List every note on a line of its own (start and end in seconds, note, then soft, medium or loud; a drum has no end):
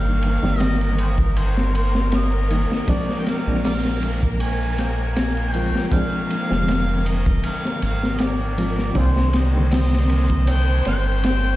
0.00 0.39 G1 loud
0.00 0.43 D#3 medium
0.00 0.44 G3 medium
0.00 0.44 A#3 medium
0.00 8.98 A#3 medium
0.00 0.38 D4 loud
0.00 2.51 D#4 medium
0.00 8.98 A#4 medium
0.00 11.56 A#4 medium
0.00 0.60 F5 loud
0.22 ride medium
0.43 2.67 G1 medium
0.43 2.47 D3 medium
0.43 2.46 D#3 medium
0.43 2.46 G3 medium
0.43 2.47 A#3 medium
0.43 snare soft
0.60 0.94 D#5 loud
0.60 snare loud
0.60 ride medium
0.60 shaker medium
0.81 ride soft
0.98 1.06 G#4 medium
0.98 1.08 C5 medium
0.98 1.40 D#5 loud
0.98 ride medium
1.18 kick medium
1.36 1.75 C5 loud
1.36 ride medium
1.57 snare soft
1.75 2.11 C5 medium
1.75 ride medium
1.95 snare medium
2.12 2.79 D#5 loud
2.12 snare loud
2.12 ride medium
2.12 shaker medium
2.50 2.84 D#3 medium
2.50 2.84 G3 medium
2.50 2.84 A#3 medium
2.50 2.85 D#4 medium
2.50 ride medium
2.72 snare soft
2.84 2.91 D#5 medium
2.88 3.42 F3 medium
2.88 3.42 G#3 medium
2.88 3.42 C4 medium
2.88 3.42 D4 loud
2.88 3.22 D5 loud
2.88 kick loud
2.88 ride medium
3.09 snare soft
3.20 3.29 G5 medium
3.27 3.64 F5 loud
3.27 snare medium
3.27 ride medium
3.46 5.71 A#1 medium
3.46 5.50 F3 medium
3.46 5.50 G#3 medium
3.46 5.50 C4 medium
3.46 5.51 D4 loud
3.64 3.73 A#4 medium
3.64 3.72 D5 medium
3.64 4.24 F5 loud
3.64 snare loud
3.64 open hi-hat medium
3.64 shaker medium
3.85 snare medium
4.03 ride medium
4.23 kick medium
4.40 4.76 G#5 loud
4.40 ride medium
4.78 5.52 G#5 loud
4.78 snare soft
4.78 ride medium
5.16 snare loud
5.16 ride medium
5.16 shaker medium
5.37 ride soft
5.52 5.88 F3 medium
5.52 5.88 G#3 medium
5.52 5.89 C4 medium
5.52 5.95 G5 loud
5.52 ride medium
5.56 5.89 F4 medium
5.76 snare soft
5.92 6.46 F3 medium
5.92 6.46 G#3 medium
5.92 6.46 C4 medium
5.92 6.46 D4 loud
5.92 7.09 F5 loud
5.92 kick loud
5.92 ride medium
6.30 ride medium
6.50 7.41 F1 medium
6.50 8.54 D3 medium
6.50 8.53 F3 medium
6.50 8.54 G#3 medium
6.50 8.54 C4 medium
6.50 snare medium
6.68 snare loud
6.68 ride medium
6.68 shaker medium
6.89 ride soft
7.06 7.48 D#5 loud
7.06 ride medium
7.26 kick loud
7.43 7.83 F5 loud
7.43 ride medium
7.65 snare soft
7.82 8.93 G#1 loud
7.82 8.13 F5 loud
7.82 ride medium
8.03 snare medium
8.15 8.23 D#5 medium
8.15 ride medium
8.20 8.97 D5 loud
8.20 snare loud
8.20 shaker medium
8.58 8.92 F3 medium
8.58 8.92 G#3 medium
8.58 8.92 C4 medium
8.58 8.92 F4 medium
8.58 ride medium
8.79 snare soft
8.95 10.82 C2 medium
8.95 9.49 D#3 medium
8.95 9.49 G3 medium
8.95 9.49 A#3 medium
8.95 9.32 C4 loud
8.95 11.56 C4 medium
8.95 9.49 D4 loud
8.95 9.04 F4 medium
8.95 9.05 G#4 medium
8.95 11.56 C5 medium
8.95 9.38 C5 loud
8.95 kick loud
8.95 ride medium
9.16 snare soft
9.33 9.73 D#5 medium
9.33 snare medium
9.33 ride medium
9.53 11.56 D3 medium
9.53 11.56 D#3 medium
9.53 11.56 G3 medium
9.53 11.56 A#3 medium
9.71 10.08 C4 medium
9.71 10.52 D#5 loud
9.71 snare loud
9.71 open hi-hat medium
9.71 shaker medium
9.93 snare medium
10.09 10.32 A#3 medium
10.09 ride medium
10.30 kick loud
10.47 10.84 C4 medium
10.47 10.87 G5 loud
10.47 ride medium
10.85 11.56 G1 medium
10.85 11.56 C5 loud
10.85 11.56 G5 loud
10.85 snare soft
10.85 ride medium
11.23 snare loud
11.23 ride medium
11.23 shaker medium
11.44 ride soft